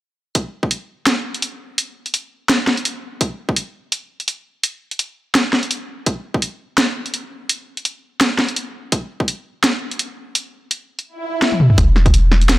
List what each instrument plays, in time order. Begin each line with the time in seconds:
0.35 kick, closed hi-hat
0.63 kick
0.71 closed hi-hat
1.07 snare, closed hi-hat
1.34 closed hi-hat
1.42 closed hi-hat
1.78 closed hi-hat
2.06 closed hi-hat
2.14 closed hi-hat
2.49 snare, closed hi-hat
2.67 snare
2.77 closed hi-hat
2.85 closed hi-hat
3.21 kick, closed hi-hat
3.49 kick
3.56 closed hi-hat
3.92 closed hi-hat
4.20 closed hi-hat
4.28 closed hi-hat
4.63 closed hi-hat
4.91 closed hi-hat
4.99 closed hi-hat
5.35 snare, closed hi-hat
5.53 snare
5.63 closed hi-hat
5.71 closed hi-hat
6.06 kick, closed hi-hat
6.34 kick
6.42 closed hi-hat
6.78 snare, closed hi-hat
7.06 closed hi-hat
7.14 closed hi-hat
7.49 closed hi-hat
7.77 closed hi-hat
7.85 closed hi-hat
8.21 snare, closed hi-hat
8.39 snare
8.49 closed hi-hat
8.56 closed hi-hat
8.92 kick, closed hi-hat
9.20 kick
9.28 closed hi-hat
9.64 snare, closed hi-hat
9.91 closed hi-hat
9.99 closed hi-hat
10.35 closed hi-hat
10.71 closed hi-hat
10.99 closed hi-hat
11.06 swell
11.42 snare
11.52 high tom
11.60 mid tom
11.70 mid tom
11.78 808-style bass E1, kick, closed hi-hat
11.96 snare
12.06 kick, closed hi-hat
12.14 closed hi-hat
12.32 snare
12.42 closed hi-hat
12.49 snare, closed hi-hat